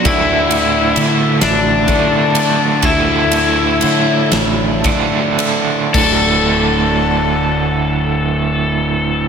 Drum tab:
CC |------|------|x-----|
RD |xxxxxx|xxxxxx|------|
SD |---o--|---o--|------|
BD |o---o-|o---o-|o-----|